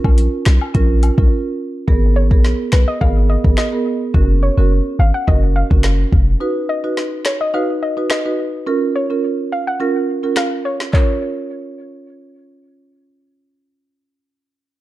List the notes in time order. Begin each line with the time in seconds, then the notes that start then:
0.04 A#1 C#4 F4 A#4, kick, high woodblock
0.18 closed hi-hat
0.45 B1, finger snap, snare, closed hi-hat, cabasa
0.61 high woodblock
0.74 A#1 C#4 F4 A#4, kick, closed hi-hat
1.03 closed hi-hat, cabasa, high woodblock
1.18 A#1 C#4 F4 A#4, kick
1.88 G#1 B3 G#4 A#4, kick
2.16 C#5
2.31 A#1 B3 G#4 A#4, kick
2.44 snare
2.72 B1 B4, finger snap, snare
2.88 D#5
3.01 G#1 B3 G#4 A#4 F5, kick
3.30 D#5
3.44 G#1 B3 G#4 A#4, kick
3.57 D#5, finger snap, snare
3.72 B3 G#4 A#4
4.14 F#1 C#4 F#4 A#4, kick
4.43 C#5
4.57 F#1 C#4 F#4 A#4
4.99 G#1 F5
5.14 F#5
5.27 F#1 C#4 F#4 A#4 D#5, kick
5.56 F5
5.71 F#1 C#4 F#4 A#4, kick
5.83 finger snap, snare
6.12 F1, kick
6.40 D#4 F#4 B4
6.69 D#5
6.84 D#4 F#4 B4
6.97 snare
7.25 C#5, finger snap, snare
7.41 D#5
7.54 D#4 F#4 B4 F5
7.83 D#5
7.97 D#4 F#4 B4
8.10 D#5, finger snap, snare
8.25 D#4 F#4 B4
8.67 C#4 F4 A#4
8.96 C#5
9.10 C#4 F4 A#4
9.52 F5
9.67 F#5
9.80 C#4 F4 A#4
10.23 C#4 F4 A#4
10.36 F5, finger snap, cross-stick, snare
10.65 C#5
10.80 snare
10.93 C#4 F4 A#4 C#5, kick, clap